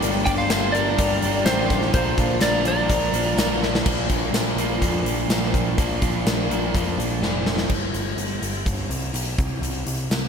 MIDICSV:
0, 0, Header, 1, 8, 480
1, 0, Start_track
1, 0, Tempo, 480000
1, 29, Time_signature, 4, 2, 24, 8
1, 10284, End_track
2, 0, Start_track
2, 0, Title_t, "Lead electric guitar"
2, 0, Program_c, 0, 29
2, 256, Note_on_c, 0, 79, 112
2, 306, Note_off_c, 0, 79, 0
2, 381, Note_on_c, 0, 77, 103
2, 723, Note_on_c, 0, 74, 101
2, 754, Note_off_c, 0, 77, 0
2, 1451, Note_off_c, 0, 74, 0
2, 1455, Note_on_c, 0, 72, 102
2, 1904, Note_off_c, 0, 72, 0
2, 1944, Note_on_c, 0, 72, 95
2, 2416, Note_off_c, 0, 72, 0
2, 2420, Note_on_c, 0, 74, 80
2, 2667, Note_off_c, 0, 74, 0
2, 2678, Note_on_c, 0, 74, 89
2, 3587, Note_off_c, 0, 74, 0
2, 10284, End_track
3, 0, Start_track
3, 0, Title_t, "Lead electric guitar"
3, 0, Program_c, 1, 29
3, 263, Note_on_c, 1, 74, 102
3, 313, Note_off_c, 1, 74, 0
3, 376, Note_on_c, 1, 72, 93
3, 715, Note_off_c, 1, 72, 0
3, 744, Note_on_c, 1, 70, 86
3, 1423, Note_off_c, 1, 70, 0
3, 1469, Note_on_c, 1, 67, 74
3, 1912, Note_off_c, 1, 67, 0
3, 1937, Note_on_c, 1, 65, 65
3, 2384, Note_off_c, 1, 65, 0
3, 2423, Note_on_c, 1, 70, 79
3, 2645, Note_off_c, 1, 70, 0
3, 2655, Note_on_c, 1, 70, 70
3, 3575, Note_off_c, 1, 70, 0
3, 10284, End_track
4, 0, Start_track
4, 0, Title_t, "Twelve-string acoustic guitar"
4, 0, Program_c, 2, 25
4, 35, Note_on_c, 2, 70, 105
4, 512, Note_off_c, 2, 70, 0
4, 516, Note_on_c, 2, 70, 76
4, 722, Note_off_c, 2, 70, 0
4, 734, Note_on_c, 2, 70, 57
4, 980, Note_off_c, 2, 70, 0
4, 1000, Note_on_c, 2, 70, 83
4, 1469, Note_off_c, 2, 70, 0
4, 1473, Note_on_c, 2, 70, 68
4, 1665, Note_off_c, 2, 70, 0
4, 1677, Note_on_c, 2, 70, 55
4, 1924, Note_off_c, 2, 70, 0
4, 1936, Note_on_c, 2, 70, 84
4, 2392, Note_on_c, 2, 53, 59
4, 2402, Note_on_c, 2, 58, 57
4, 2406, Note_off_c, 2, 70, 0
4, 2418, Note_on_c, 2, 70, 65
4, 2872, Note_off_c, 2, 53, 0
4, 2882, Note_off_c, 2, 58, 0
4, 2892, Note_off_c, 2, 70, 0
4, 2904, Note_on_c, 2, 70, 79
4, 3373, Note_off_c, 2, 70, 0
4, 3385, Note_on_c, 2, 70, 77
4, 3593, Note_off_c, 2, 70, 0
4, 3605, Note_on_c, 2, 70, 62
4, 3851, Note_off_c, 2, 70, 0
4, 10284, End_track
5, 0, Start_track
5, 0, Title_t, "Overdriven electric guitar"
5, 0, Program_c, 3, 29
5, 16, Note_on_c, 3, 43, 86
5, 21, Note_on_c, 3, 50, 96
5, 28, Note_on_c, 3, 55, 92
5, 31, Note_on_c, 3, 58, 96
5, 33, Note_on_c, 3, 62, 90
5, 260, Note_off_c, 3, 62, 0
5, 264, Note_on_c, 3, 62, 68
5, 267, Note_off_c, 3, 55, 0
5, 271, Note_off_c, 3, 58, 0
5, 275, Note_on_c, 3, 58, 56
5, 279, Note_on_c, 3, 55, 62
5, 472, Note_off_c, 3, 50, 0
5, 482, Note_off_c, 3, 55, 0
5, 484, Note_on_c, 3, 50, 72
5, 490, Note_off_c, 3, 58, 0
5, 494, Note_on_c, 3, 55, 82
5, 494, Note_on_c, 3, 58, 66
5, 501, Note_off_c, 3, 43, 0
5, 502, Note_off_c, 3, 62, 0
5, 506, Note_on_c, 3, 62, 84
5, 727, Note_off_c, 3, 62, 0
5, 731, Note_on_c, 3, 62, 70
5, 742, Note_off_c, 3, 58, 0
5, 743, Note_off_c, 3, 55, 0
5, 746, Note_on_c, 3, 58, 77
5, 755, Note_on_c, 3, 55, 61
5, 969, Note_off_c, 3, 50, 0
5, 975, Note_on_c, 3, 43, 95
5, 976, Note_off_c, 3, 55, 0
5, 981, Note_on_c, 3, 50, 81
5, 985, Note_off_c, 3, 58, 0
5, 988, Note_off_c, 3, 62, 0
5, 988, Note_on_c, 3, 55, 94
5, 989, Note_on_c, 3, 58, 103
5, 992, Note_on_c, 3, 62, 110
5, 1449, Note_off_c, 3, 50, 0
5, 1460, Note_off_c, 3, 55, 0
5, 1461, Note_on_c, 3, 50, 81
5, 1472, Note_off_c, 3, 58, 0
5, 1472, Note_on_c, 3, 55, 86
5, 1475, Note_off_c, 3, 62, 0
5, 1476, Note_on_c, 3, 58, 77
5, 1479, Note_on_c, 3, 62, 88
5, 1698, Note_off_c, 3, 43, 0
5, 1702, Note_off_c, 3, 62, 0
5, 1706, Note_on_c, 3, 62, 66
5, 1716, Note_off_c, 3, 55, 0
5, 1717, Note_off_c, 3, 58, 0
5, 1721, Note_on_c, 3, 58, 73
5, 1728, Note_on_c, 3, 55, 58
5, 1927, Note_off_c, 3, 50, 0
5, 1941, Note_off_c, 3, 55, 0
5, 1947, Note_on_c, 3, 46, 89
5, 1952, Note_on_c, 3, 53, 86
5, 1953, Note_on_c, 3, 50, 78
5, 1961, Note_off_c, 3, 58, 0
5, 1965, Note_off_c, 3, 62, 0
5, 1966, Note_on_c, 3, 58, 97
5, 1969, Note_on_c, 3, 62, 102
5, 2173, Note_off_c, 3, 62, 0
5, 2183, Note_off_c, 3, 58, 0
5, 2185, Note_on_c, 3, 62, 76
5, 2191, Note_off_c, 3, 53, 0
5, 2195, Note_on_c, 3, 58, 64
5, 2203, Note_on_c, 3, 53, 62
5, 2415, Note_off_c, 3, 50, 0
5, 2423, Note_off_c, 3, 46, 0
5, 2425, Note_off_c, 3, 53, 0
5, 2427, Note_on_c, 3, 50, 66
5, 2430, Note_off_c, 3, 58, 0
5, 2432, Note_off_c, 3, 62, 0
5, 2437, Note_on_c, 3, 53, 70
5, 2442, Note_on_c, 3, 58, 68
5, 2444, Note_on_c, 3, 62, 74
5, 2649, Note_off_c, 3, 62, 0
5, 2659, Note_off_c, 3, 58, 0
5, 2661, Note_on_c, 3, 62, 64
5, 2668, Note_off_c, 3, 53, 0
5, 2671, Note_on_c, 3, 58, 62
5, 2680, Note_on_c, 3, 53, 57
5, 2881, Note_off_c, 3, 50, 0
5, 2886, Note_off_c, 3, 53, 0
5, 2886, Note_off_c, 3, 58, 0
5, 2890, Note_off_c, 3, 62, 0
5, 2891, Note_on_c, 3, 46, 86
5, 2893, Note_on_c, 3, 50, 86
5, 2898, Note_on_c, 3, 53, 100
5, 2898, Note_on_c, 3, 58, 102
5, 2902, Note_on_c, 3, 62, 97
5, 3364, Note_off_c, 3, 50, 0
5, 3373, Note_off_c, 3, 53, 0
5, 3376, Note_on_c, 3, 50, 77
5, 3383, Note_off_c, 3, 58, 0
5, 3385, Note_on_c, 3, 53, 82
5, 3390, Note_off_c, 3, 62, 0
5, 3395, Note_on_c, 3, 58, 88
5, 3402, Note_on_c, 3, 62, 85
5, 3610, Note_off_c, 3, 62, 0
5, 3614, Note_off_c, 3, 46, 0
5, 3622, Note_off_c, 3, 58, 0
5, 3622, Note_on_c, 3, 62, 76
5, 3626, Note_off_c, 3, 53, 0
5, 3634, Note_on_c, 3, 58, 72
5, 3638, Note_on_c, 3, 53, 53
5, 3842, Note_off_c, 3, 50, 0
5, 3845, Note_off_c, 3, 62, 0
5, 3846, Note_off_c, 3, 53, 0
5, 3851, Note_off_c, 3, 58, 0
5, 3855, Note_on_c, 3, 46, 87
5, 3858, Note_on_c, 3, 53, 90
5, 3867, Note_on_c, 3, 58, 94
5, 3872, Note_on_c, 3, 62, 97
5, 4099, Note_off_c, 3, 62, 0
5, 4103, Note_on_c, 3, 62, 67
5, 4107, Note_off_c, 3, 58, 0
5, 4111, Note_on_c, 3, 58, 56
5, 4119, Note_off_c, 3, 53, 0
5, 4123, Note_on_c, 3, 53, 50
5, 4334, Note_off_c, 3, 46, 0
5, 4338, Note_on_c, 3, 46, 66
5, 4347, Note_off_c, 3, 58, 0
5, 4348, Note_off_c, 3, 53, 0
5, 4351, Note_on_c, 3, 58, 78
5, 4352, Note_on_c, 3, 53, 72
5, 4358, Note_off_c, 3, 62, 0
5, 4362, Note_on_c, 3, 62, 79
5, 4587, Note_off_c, 3, 62, 0
5, 4591, Note_on_c, 3, 62, 72
5, 4601, Note_off_c, 3, 58, 0
5, 4605, Note_on_c, 3, 58, 65
5, 4609, Note_off_c, 3, 53, 0
5, 4613, Note_on_c, 3, 53, 60
5, 4823, Note_off_c, 3, 46, 0
5, 4823, Note_off_c, 3, 53, 0
5, 4827, Note_on_c, 3, 46, 91
5, 4834, Note_off_c, 3, 58, 0
5, 4835, Note_on_c, 3, 53, 79
5, 4838, Note_on_c, 3, 58, 95
5, 4843, Note_off_c, 3, 62, 0
5, 4847, Note_on_c, 3, 62, 88
5, 5054, Note_off_c, 3, 62, 0
5, 5058, Note_on_c, 3, 62, 57
5, 5064, Note_off_c, 3, 53, 0
5, 5067, Note_off_c, 3, 58, 0
5, 5071, Note_on_c, 3, 58, 67
5, 5076, Note_on_c, 3, 53, 54
5, 5286, Note_off_c, 3, 46, 0
5, 5291, Note_off_c, 3, 53, 0
5, 5298, Note_on_c, 3, 46, 65
5, 5303, Note_on_c, 3, 53, 83
5, 5311, Note_off_c, 3, 58, 0
5, 5311, Note_off_c, 3, 62, 0
5, 5315, Note_on_c, 3, 58, 70
5, 5315, Note_on_c, 3, 62, 71
5, 5775, Note_off_c, 3, 46, 0
5, 5775, Note_off_c, 3, 53, 0
5, 5782, Note_off_c, 3, 58, 0
5, 5787, Note_off_c, 3, 62, 0
5, 5787, Note_on_c, 3, 46, 83
5, 5787, Note_on_c, 3, 53, 87
5, 5794, Note_on_c, 3, 58, 91
5, 5799, Note_on_c, 3, 62, 81
5, 6006, Note_off_c, 3, 62, 0
5, 6018, Note_on_c, 3, 62, 70
5, 6022, Note_off_c, 3, 58, 0
5, 6028, Note_off_c, 3, 53, 0
5, 6034, Note_on_c, 3, 58, 60
5, 6040, Note_on_c, 3, 53, 59
5, 6253, Note_off_c, 3, 46, 0
5, 6256, Note_off_c, 3, 53, 0
5, 6263, Note_off_c, 3, 58, 0
5, 6265, Note_off_c, 3, 62, 0
5, 6265, Note_on_c, 3, 46, 69
5, 6268, Note_on_c, 3, 53, 63
5, 6275, Note_on_c, 3, 58, 70
5, 6277, Note_on_c, 3, 62, 85
5, 6491, Note_off_c, 3, 62, 0
5, 6502, Note_off_c, 3, 58, 0
5, 6503, Note_on_c, 3, 62, 75
5, 6509, Note_off_c, 3, 53, 0
5, 6514, Note_on_c, 3, 58, 53
5, 6520, Note_on_c, 3, 53, 56
5, 6731, Note_off_c, 3, 46, 0
5, 6735, Note_off_c, 3, 53, 0
5, 6743, Note_on_c, 3, 46, 82
5, 6747, Note_off_c, 3, 58, 0
5, 6747, Note_on_c, 3, 53, 97
5, 6750, Note_off_c, 3, 62, 0
5, 6759, Note_on_c, 3, 58, 99
5, 6762, Note_on_c, 3, 62, 90
5, 6978, Note_off_c, 3, 62, 0
5, 6989, Note_off_c, 3, 58, 0
5, 6990, Note_on_c, 3, 62, 57
5, 6996, Note_off_c, 3, 53, 0
5, 7001, Note_on_c, 3, 58, 51
5, 7008, Note_on_c, 3, 53, 55
5, 7211, Note_off_c, 3, 46, 0
5, 7222, Note_off_c, 3, 53, 0
5, 7223, Note_off_c, 3, 58, 0
5, 7223, Note_on_c, 3, 46, 66
5, 7230, Note_off_c, 3, 62, 0
5, 7234, Note_on_c, 3, 53, 74
5, 7235, Note_on_c, 3, 58, 72
5, 7242, Note_on_c, 3, 62, 86
5, 7687, Note_off_c, 3, 46, 0
5, 7693, Note_off_c, 3, 53, 0
5, 7693, Note_off_c, 3, 58, 0
5, 7697, Note_off_c, 3, 62, 0
5, 10284, End_track
6, 0, Start_track
6, 0, Title_t, "Overdriven electric guitar"
6, 0, Program_c, 4, 29
6, 1229, Note_on_c, 4, 62, 70
6, 1245, Note_on_c, 4, 58, 70
6, 1260, Note_on_c, 4, 55, 60
6, 1464, Note_off_c, 4, 55, 0
6, 1467, Note_on_c, 4, 43, 102
6, 1481, Note_off_c, 4, 58, 0
6, 1489, Note_off_c, 4, 62, 0
6, 1930, Note_off_c, 4, 43, 0
6, 3130, Note_on_c, 4, 62, 74
6, 3145, Note_on_c, 4, 58, 66
6, 3152, Note_on_c, 4, 53, 59
6, 3360, Note_on_c, 4, 46, 93
6, 3363, Note_off_c, 4, 53, 0
6, 3365, Note_off_c, 4, 58, 0
6, 3375, Note_off_c, 4, 62, 0
6, 3827, Note_off_c, 4, 46, 0
6, 4597, Note_on_c, 4, 46, 74
6, 5767, Note_off_c, 4, 46, 0
6, 6521, Note_on_c, 4, 46, 70
6, 7697, Note_off_c, 4, 46, 0
6, 10284, End_track
7, 0, Start_track
7, 0, Title_t, "Picked electric bass"
7, 0, Program_c, 5, 34
7, 32, Note_on_c, 5, 31, 113
7, 251, Note_off_c, 5, 31, 0
7, 267, Note_on_c, 5, 31, 93
7, 489, Note_off_c, 5, 31, 0
7, 511, Note_on_c, 5, 31, 81
7, 951, Note_off_c, 5, 31, 0
7, 987, Note_on_c, 5, 31, 101
7, 1208, Note_off_c, 5, 31, 0
7, 1221, Note_on_c, 5, 31, 86
7, 1444, Note_off_c, 5, 31, 0
7, 1451, Note_on_c, 5, 33, 92
7, 1899, Note_off_c, 5, 33, 0
7, 1939, Note_on_c, 5, 34, 100
7, 2162, Note_off_c, 5, 34, 0
7, 2173, Note_on_c, 5, 34, 91
7, 2398, Note_off_c, 5, 34, 0
7, 2417, Note_on_c, 5, 34, 89
7, 2861, Note_off_c, 5, 34, 0
7, 2895, Note_on_c, 5, 34, 96
7, 3115, Note_off_c, 5, 34, 0
7, 3121, Note_on_c, 5, 34, 82
7, 3351, Note_off_c, 5, 34, 0
7, 3358, Note_on_c, 5, 34, 100
7, 3810, Note_off_c, 5, 34, 0
7, 3858, Note_on_c, 5, 34, 92
7, 4090, Note_off_c, 5, 34, 0
7, 4095, Note_on_c, 5, 34, 81
7, 4320, Note_off_c, 5, 34, 0
7, 4326, Note_on_c, 5, 34, 89
7, 4546, Note_off_c, 5, 34, 0
7, 4552, Note_on_c, 5, 34, 82
7, 4796, Note_off_c, 5, 34, 0
7, 4814, Note_on_c, 5, 41, 90
7, 5023, Note_off_c, 5, 41, 0
7, 5029, Note_on_c, 5, 34, 74
7, 5275, Note_off_c, 5, 34, 0
7, 5279, Note_on_c, 5, 34, 89
7, 5752, Note_off_c, 5, 34, 0
7, 5776, Note_on_c, 5, 34, 94
7, 6009, Note_off_c, 5, 34, 0
7, 6019, Note_on_c, 5, 34, 97
7, 6248, Note_off_c, 5, 34, 0
7, 6254, Note_on_c, 5, 34, 80
7, 6486, Note_off_c, 5, 34, 0
7, 6492, Note_on_c, 5, 34, 94
7, 6727, Note_off_c, 5, 34, 0
7, 6743, Note_on_c, 5, 41, 80
7, 6965, Note_off_c, 5, 41, 0
7, 6971, Note_on_c, 5, 34, 74
7, 7202, Note_off_c, 5, 34, 0
7, 7208, Note_on_c, 5, 29, 84
7, 7679, Note_off_c, 5, 29, 0
7, 7693, Note_on_c, 5, 31, 84
7, 7902, Note_off_c, 5, 31, 0
7, 7932, Note_on_c, 5, 31, 85
7, 8141, Note_off_c, 5, 31, 0
7, 8170, Note_on_c, 5, 31, 70
7, 8380, Note_off_c, 5, 31, 0
7, 8421, Note_on_c, 5, 31, 83
7, 8627, Note_off_c, 5, 31, 0
7, 8655, Note_on_c, 5, 31, 87
7, 8864, Note_off_c, 5, 31, 0
7, 8892, Note_on_c, 5, 36, 65
7, 9102, Note_off_c, 5, 36, 0
7, 9136, Note_on_c, 5, 35, 76
7, 9345, Note_off_c, 5, 35, 0
7, 9382, Note_on_c, 5, 36, 87
7, 9589, Note_off_c, 5, 36, 0
7, 9613, Note_on_c, 5, 36, 95
7, 9824, Note_off_c, 5, 36, 0
7, 9864, Note_on_c, 5, 36, 78
7, 10071, Note_off_c, 5, 36, 0
7, 10101, Note_on_c, 5, 36, 69
7, 10284, Note_off_c, 5, 36, 0
7, 10284, End_track
8, 0, Start_track
8, 0, Title_t, "Drums"
8, 25, Note_on_c, 9, 42, 97
8, 125, Note_off_c, 9, 42, 0
8, 261, Note_on_c, 9, 42, 81
8, 265, Note_on_c, 9, 39, 62
8, 268, Note_on_c, 9, 36, 87
8, 361, Note_off_c, 9, 42, 0
8, 365, Note_off_c, 9, 39, 0
8, 368, Note_off_c, 9, 36, 0
8, 500, Note_on_c, 9, 42, 103
8, 500, Note_on_c, 9, 54, 105
8, 502, Note_on_c, 9, 38, 111
8, 507, Note_on_c, 9, 39, 101
8, 600, Note_off_c, 9, 42, 0
8, 600, Note_off_c, 9, 54, 0
8, 602, Note_off_c, 9, 38, 0
8, 607, Note_off_c, 9, 39, 0
8, 747, Note_on_c, 9, 42, 78
8, 847, Note_off_c, 9, 42, 0
8, 985, Note_on_c, 9, 42, 108
8, 987, Note_on_c, 9, 36, 90
8, 1085, Note_off_c, 9, 42, 0
8, 1087, Note_off_c, 9, 36, 0
8, 1223, Note_on_c, 9, 42, 74
8, 1323, Note_off_c, 9, 42, 0
8, 1458, Note_on_c, 9, 42, 102
8, 1458, Note_on_c, 9, 54, 127
8, 1460, Note_on_c, 9, 38, 122
8, 1464, Note_on_c, 9, 39, 99
8, 1558, Note_off_c, 9, 42, 0
8, 1558, Note_off_c, 9, 54, 0
8, 1560, Note_off_c, 9, 38, 0
8, 1564, Note_off_c, 9, 39, 0
8, 1702, Note_on_c, 9, 42, 71
8, 1703, Note_on_c, 9, 36, 80
8, 1704, Note_on_c, 9, 38, 31
8, 1802, Note_off_c, 9, 42, 0
8, 1803, Note_off_c, 9, 36, 0
8, 1804, Note_off_c, 9, 38, 0
8, 1821, Note_on_c, 9, 38, 40
8, 1921, Note_off_c, 9, 38, 0
8, 1937, Note_on_c, 9, 42, 91
8, 1939, Note_on_c, 9, 36, 122
8, 2037, Note_off_c, 9, 42, 0
8, 2039, Note_off_c, 9, 36, 0
8, 2177, Note_on_c, 9, 42, 74
8, 2179, Note_on_c, 9, 36, 82
8, 2180, Note_on_c, 9, 39, 71
8, 2277, Note_off_c, 9, 42, 0
8, 2279, Note_off_c, 9, 36, 0
8, 2280, Note_off_c, 9, 39, 0
8, 2411, Note_on_c, 9, 39, 104
8, 2411, Note_on_c, 9, 42, 99
8, 2411, Note_on_c, 9, 54, 117
8, 2413, Note_on_c, 9, 38, 104
8, 2511, Note_off_c, 9, 39, 0
8, 2511, Note_off_c, 9, 42, 0
8, 2511, Note_off_c, 9, 54, 0
8, 2513, Note_off_c, 9, 38, 0
8, 2652, Note_on_c, 9, 42, 66
8, 2752, Note_off_c, 9, 42, 0
8, 2896, Note_on_c, 9, 36, 83
8, 2898, Note_on_c, 9, 42, 86
8, 2996, Note_off_c, 9, 36, 0
8, 2998, Note_off_c, 9, 42, 0
8, 3137, Note_on_c, 9, 42, 62
8, 3237, Note_off_c, 9, 42, 0
8, 3382, Note_on_c, 9, 39, 91
8, 3384, Note_on_c, 9, 42, 101
8, 3384, Note_on_c, 9, 54, 121
8, 3386, Note_on_c, 9, 38, 120
8, 3482, Note_off_c, 9, 39, 0
8, 3484, Note_off_c, 9, 42, 0
8, 3484, Note_off_c, 9, 54, 0
8, 3486, Note_off_c, 9, 38, 0
8, 3628, Note_on_c, 9, 38, 60
8, 3728, Note_off_c, 9, 38, 0
8, 3752, Note_on_c, 9, 38, 98
8, 3852, Note_off_c, 9, 38, 0
8, 3858, Note_on_c, 9, 49, 91
8, 3860, Note_on_c, 9, 36, 109
8, 3958, Note_off_c, 9, 49, 0
8, 3960, Note_off_c, 9, 36, 0
8, 4096, Note_on_c, 9, 42, 68
8, 4098, Note_on_c, 9, 36, 82
8, 4196, Note_off_c, 9, 42, 0
8, 4198, Note_off_c, 9, 36, 0
8, 4341, Note_on_c, 9, 42, 90
8, 4341, Note_on_c, 9, 54, 108
8, 4343, Note_on_c, 9, 38, 98
8, 4441, Note_off_c, 9, 42, 0
8, 4441, Note_off_c, 9, 54, 0
8, 4443, Note_off_c, 9, 38, 0
8, 4584, Note_on_c, 9, 42, 68
8, 4684, Note_off_c, 9, 42, 0
8, 4819, Note_on_c, 9, 36, 85
8, 4820, Note_on_c, 9, 42, 80
8, 4919, Note_off_c, 9, 36, 0
8, 4920, Note_off_c, 9, 42, 0
8, 5062, Note_on_c, 9, 42, 60
8, 5162, Note_off_c, 9, 42, 0
8, 5300, Note_on_c, 9, 42, 95
8, 5300, Note_on_c, 9, 54, 121
8, 5302, Note_on_c, 9, 38, 110
8, 5400, Note_off_c, 9, 42, 0
8, 5400, Note_off_c, 9, 54, 0
8, 5402, Note_off_c, 9, 38, 0
8, 5429, Note_on_c, 9, 38, 31
8, 5529, Note_off_c, 9, 38, 0
8, 5540, Note_on_c, 9, 36, 81
8, 5545, Note_on_c, 9, 42, 62
8, 5640, Note_off_c, 9, 36, 0
8, 5645, Note_off_c, 9, 42, 0
8, 5782, Note_on_c, 9, 36, 99
8, 5782, Note_on_c, 9, 42, 80
8, 5882, Note_off_c, 9, 36, 0
8, 5882, Note_off_c, 9, 42, 0
8, 6018, Note_on_c, 9, 42, 60
8, 6021, Note_on_c, 9, 36, 85
8, 6118, Note_off_c, 9, 42, 0
8, 6121, Note_off_c, 9, 36, 0
8, 6266, Note_on_c, 9, 42, 74
8, 6266, Note_on_c, 9, 54, 105
8, 6268, Note_on_c, 9, 38, 107
8, 6366, Note_off_c, 9, 42, 0
8, 6366, Note_off_c, 9, 54, 0
8, 6368, Note_off_c, 9, 38, 0
8, 6513, Note_on_c, 9, 42, 55
8, 6613, Note_off_c, 9, 42, 0
8, 6745, Note_on_c, 9, 36, 80
8, 6750, Note_on_c, 9, 42, 80
8, 6845, Note_off_c, 9, 36, 0
8, 6850, Note_off_c, 9, 42, 0
8, 6998, Note_on_c, 9, 42, 57
8, 7098, Note_off_c, 9, 42, 0
8, 7228, Note_on_c, 9, 38, 56
8, 7328, Note_off_c, 9, 38, 0
8, 7464, Note_on_c, 9, 38, 81
8, 7564, Note_off_c, 9, 38, 0
8, 7579, Note_on_c, 9, 38, 92
8, 7679, Note_off_c, 9, 38, 0
8, 7695, Note_on_c, 9, 49, 78
8, 7698, Note_on_c, 9, 36, 87
8, 7795, Note_off_c, 9, 49, 0
8, 7798, Note_off_c, 9, 36, 0
8, 7942, Note_on_c, 9, 42, 62
8, 8042, Note_off_c, 9, 42, 0
8, 8179, Note_on_c, 9, 42, 76
8, 8279, Note_off_c, 9, 42, 0
8, 8426, Note_on_c, 9, 42, 53
8, 8526, Note_off_c, 9, 42, 0
8, 8663, Note_on_c, 9, 36, 75
8, 8663, Note_on_c, 9, 42, 69
8, 8763, Note_off_c, 9, 36, 0
8, 8763, Note_off_c, 9, 42, 0
8, 8908, Note_on_c, 9, 42, 56
8, 9008, Note_off_c, 9, 42, 0
8, 9141, Note_on_c, 9, 42, 78
8, 9241, Note_off_c, 9, 42, 0
8, 9385, Note_on_c, 9, 36, 98
8, 9389, Note_on_c, 9, 42, 53
8, 9485, Note_off_c, 9, 36, 0
8, 9489, Note_off_c, 9, 42, 0
8, 9630, Note_on_c, 9, 42, 71
8, 9730, Note_off_c, 9, 42, 0
8, 9866, Note_on_c, 9, 42, 53
8, 9966, Note_off_c, 9, 42, 0
8, 10112, Note_on_c, 9, 42, 61
8, 10112, Note_on_c, 9, 54, 98
8, 10114, Note_on_c, 9, 38, 85
8, 10212, Note_off_c, 9, 42, 0
8, 10212, Note_off_c, 9, 54, 0
8, 10214, Note_off_c, 9, 38, 0
8, 10284, End_track
0, 0, End_of_file